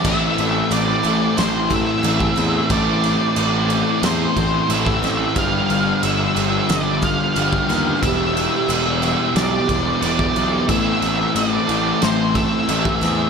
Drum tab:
CC |x-x-x-x-x-x-x-x-|x-x-x-x-x-x-x-x-|x-x-x-x-x-x-x-x-|x-x-x-x-x-x-x-x-|
SD |--------o-------|--------o-----o-|--------o-----o-|--------o-------|
BD |o---------o--o--|o---------o--o--|o---------o--o--|o---------o--o--|

CC |x-x-x-x-x-x-x-x-|
SD |--------o-----o-|
BD |o---------o--o--|